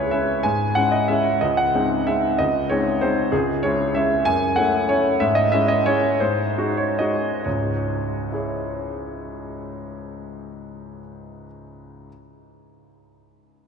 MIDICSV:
0, 0, Header, 1, 2, 480
1, 0, Start_track
1, 0, Key_signature, 4, "minor"
1, 0, Tempo, 326797
1, 642, Time_signature, 3, 2, 24, 8
1, 3044, Tempo, 312989
1, 8324, Tempo, 345423
1, 9284, Tempo, 368098
1, 9764, Tempo, 418994
1, 10244, Tempo, 444444
1, 11684, Tempo, 416378
1, 13604, Tempo, 398142
1, 18044, End_track
2, 0, Start_track
2, 0, Title_t, "Grand piano"
2, 0, Program_c, 0, 0
2, 0, Control_c, 0, 64, 127
2, 0, Note_on_c, 0, 37, 39
2, 0, Note_on_c, 0, 56, 39
2, 0, Note_on_c, 0, 61, 36
2, 0, Note_on_c, 0, 64, 42
2, 0, Note_on_c, 0, 71, 64
2, 0, Note_on_c, 0, 73, 70
2, 153, Note_off_c, 0, 73, 0
2, 166, Note_on_c, 0, 76, 62
2, 170, Note_off_c, 0, 56, 0
2, 170, Note_on_c, 0, 56, 35
2, 183, Note_off_c, 0, 61, 0
2, 183, Note_off_c, 0, 64, 0
2, 183, Note_on_c, 0, 61, 37
2, 183, Note_on_c, 0, 64, 37
2, 596, Note_off_c, 0, 56, 0
2, 604, Note_off_c, 0, 61, 0
2, 604, Note_off_c, 0, 64, 0
2, 636, Note_on_c, 0, 80, 69
2, 642, Note_off_c, 0, 76, 0
2, 655, Note_on_c, 0, 44, 44
2, 665, Control_c, 0, 64, 0
2, 667, Note_off_c, 0, 37, 0
2, 674, Note_off_c, 0, 71, 0
2, 933, Control_c, 0, 64, 127
2, 1104, Note_on_c, 0, 78, 75
2, 1106, Note_off_c, 0, 44, 0
2, 1111, Note_off_c, 0, 80, 0
2, 1116, Note_on_c, 0, 56, 38
2, 1126, Note_on_c, 0, 61, 33
2, 1126, Note_on_c, 0, 64, 37
2, 1347, Note_on_c, 0, 75, 59
2, 1352, Note_off_c, 0, 78, 0
2, 1558, Note_off_c, 0, 56, 0
2, 1563, Note_off_c, 0, 61, 0
2, 1563, Note_off_c, 0, 64, 0
2, 1586, Note_on_c, 0, 76, 64
2, 1601, Note_off_c, 0, 75, 0
2, 1604, Note_on_c, 0, 56, 37
2, 1612, Note_on_c, 0, 61, 33
2, 1620, Note_on_c, 0, 64, 34
2, 2042, Note_off_c, 0, 56, 0
2, 2046, Note_off_c, 0, 61, 0
2, 2050, Note_off_c, 0, 64, 0
2, 2071, Note_on_c, 0, 75, 64
2, 2081, Note_off_c, 0, 76, 0
2, 2086, Note_on_c, 0, 37, 44
2, 2117, Control_c, 0, 64, 0
2, 2311, Note_on_c, 0, 78, 73
2, 2317, Note_off_c, 0, 75, 0
2, 2383, Control_c, 0, 64, 127
2, 2550, Note_off_c, 0, 37, 0
2, 2564, Note_on_c, 0, 56, 39
2, 2574, Note_on_c, 0, 60, 39
2, 2581, Note_on_c, 0, 63, 41
2, 2995, Note_off_c, 0, 56, 0
2, 3001, Note_off_c, 0, 60, 0
2, 3005, Note_off_c, 0, 63, 0
2, 3036, Note_on_c, 0, 76, 61
2, 3037, Note_off_c, 0, 78, 0
2, 3050, Note_on_c, 0, 56, 35
2, 3059, Note_on_c, 0, 63, 36
2, 3060, Note_on_c, 0, 60, 35
2, 3487, Note_off_c, 0, 56, 0
2, 3492, Note_off_c, 0, 63, 0
2, 3493, Note_off_c, 0, 60, 0
2, 3524, Note_on_c, 0, 75, 68
2, 3529, Note_off_c, 0, 76, 0
2, 3542, Note_on_c, 0, 37, 44
2, 3557, Control_c, 0, 64, 0
2, 3827, Control_c, 0, 64, 127
2, 4000, Note_on_c, 0, 73, 70
2, 4001, Note_off_c, 0, 37, 0
2, 4006, Note_off_c, 0, 75, 0
2, 4014, Note_on_c, 0, 56, 40
2, 4019, Note_on_c, 0, 60, 40
2, 4029, Note_on_c, 0, 63, 43
2, 4451, Note_off_c, 0, 56, 0
2, 4454, Note_off_c, 0, 60, 0
2, 4459, Note_off_c, 0, 63, 0
2, 4488, Note_on_c, 0, 72, 67
2, 4492, Note_off_c, 0, 73, 0
2, 4506, Note_on_c, 0, 56, 35
2, 4509, Note_on_c, 0, 60, 36
2, 4519, Note_on_c, 0, 63, 38
2, 4920, Note_off_c, 0, 56, 0
2, 4922, Note_off_c, 0, 60, 0
2, 4928, Note_off_c, 0, 63, 0
2, 4955, Note_on_c, 0, 68, 66
2, 4957, Note_off_c, 0, 72, 0
2, 4967, Note_on_c, 0, 37, 49
2, 4992, Control_c, 0, 64, 0
2, 5225, Control_c, 0, 64, 127
2, 5420, Note_off_c, 0, 37, 0
2, 5428, Note_off_c, 0, 68, 0
2, 5430, Note_on_c, 0, 73, 71
2, 5445, Note_on_c, 0, 56, 41
2, 5446, Note_on_c, 0, 61, 42
2, 5458, Note_on_c, 0, 64, 44
2, 5873, Note_off_c, 0, 56, 0
2, 5873, Note_off_c, 0, 61, 0
2, 5880, Note_off_c, 0, 64, 0
2, 5913, Note_off_c, 0, 73, 0
2, 5919, Note_on_c, 0, 76, 71
2, 5934, Note_on_c, 0, 56, 42
2, 5941, Note_on_c, 0, 61, 39
2, 5949, Note_on_c, 0, 64, 41
2, 6349, Note_off_c, 0, 56, 0
2, 6353, Note_off_c, 0, 61, 0
2, 6357, Note_off_c, 0, 64, 0
2, 6388, Note_off_c, 0, 76, 0
2, 6388, Note_on_c, 0, 80, 88
2, 6403, Note_on_c, 0, 42, 46
2, 6411, Control_c, 0, 64, 0
2, 6684, Control_c, 0, 64, 127
2, 6857, Note_on_c, 0, 78, 71
2, 6860, Note_off_c, 0, 42, 0
2, 6867, Note_off_c, 0, 80, 0
2, 6874, Note_on_c, 0, 57, 44
2, 6878, Note_on_c, 0, 61, 44
2, 6888, Note_on_c, 0, 64, 49
2, 7310, Note_off_c, 0, 57, 0
2, 7313, Note_off_c, 0, 61, 0
2, 7318, Note_off_c, 0, 64, 0
2, 7351, Note_off_c, 0, 78, 0
2, 7364, Note_on_c, 0, 73, 69
2, 7378, Note_on_c, 0, 57, 39
2, 7386, Note_on_c, 0, 61, 38
2, 7387, Note_on_c, 0, 64, 45
2, 7798, Note_off_c, 0, 57, 0
2, 7803, Note_off_c, 0, 61, 0
2, 7803, Note_off_c, 0, 64, 0
2, 7838, Note_off_c, 0, 73, 0
2, 7842, Note_on_c, 0, 76, 75
2, 7852, Note_on_c, 0, 44, 48
2, 7863, Control_c, 0, 64, 0
2, 8073, Note_on_c, 0, 75, 73
2, 8080, Note_off_c, 0, 76, 0
2, 8094, Control_c, 0, 64, 127
2, 8319, Note_off_c, 0, 44, 0
2, 8322, Note_off_c, 0, 75, 0
2, 8329, Note_on_c, 0, 76, 83
2, 8345, Note_on_c, 0, 56, 45
2, 8351, Note_on_c, 0, 61, 42
2, 8355, Note_on_c, 0, 64, 47
2, 8555, Note_off_c, 0, 76, 0
2, 8558, Note_on_c, 0, 75, 80
2, 8757, Note_off_c, 0, 56, 0
2, 8760, Note_off_c, 0, 61, 0
2, 8762, Note_off_c, 0, 64, 0
2, 8794, Note_off_c, 0, 75, 0
2, 8801, Note_on_c, 0, 73, 78
2, 8809, Note_on_c, 0, 56, 39
2, 8818, Note_on_c, 0, 61, 41
2, 8829, Note_on_c, 0, 64, 39
2, 9244, Note_off_c, 0, 56, 0
2, 9249, Note_off_c, 0, 61, 0
2, 9255, Note_off_c, 0, 64, 0
2, 9278, Note_on_c, 0, 72, 64
2, 9287, Note_on_c, 0, 44, 45
2, 9288, Note_off_c, 0, 73, 0
2, 9312, Control_c, 0, 64, 0
2, 9527, Control_c, 0, 64, 127
2, 9751, Note_off_c, 0, 44, 0
2, 9767, Note_on_c, 0, 56, 38
2, 9772, Note_on_c, 0, 63, 42
2, 9773, Note_on_c, 0, 66, 42
2, 9992, Note_on_c, 0, 73, 57
2, 9993, Note_off_c, 0, 72, 0
2, 10199, Note_off_c, 0, 56, 0
2, 10202, Note_off_c, 0, 63, 0
2, 10202, Note_off_c, 0, 66, 0
2, 10237, Note_on_c, 0, 75, 60
2, 10242, Note_off_c, 0, 73, 0
2, 10249, Note_on_c, 0, 56, 34
2, 10252, Note_on_c, 0, 63, 30
2, 10256, Note_on_c, 0, 66, 36
2, 10699, Note_off_c, 0, 56, 0
2, 10700, Note_off_c, 0, 63, 0
2, 10703, Note_off_c, 0, 66, 0
2, 10732, Note_on_c, 0, 73, 40
2, 10736, Note_off_c, 0, 75, 0
2, 10742, Note_on_c, 0, 44, 34
2, 10748, Note_on_c, 0, 37, 38
2, 10767, Control_c, 0, 64, 0
2, 11020, Control_c, 0, 64, 127
2, 11677, Note_on_c, 0, 64, 31
2, 11697, Note_on_c, 0, 68, 33
2, 11705, Note_off_c, 0, 73, 0
2, 11722, Note_on_c, 0, 73, 32
2, 14801, Note_off_c, 0, 44, 0
2, 14807, Note_off_c, 0, 37, 0
2, 15361, Note_off_c, 0, 64, 0
2, 15372, Note_off_c, 0, 68, 0
2, 15385, Note_off_c, 0, 73, 0
2, 16128, Control_c, 0, 64, 0
2, 18044, End_track
0, 0, End_of_file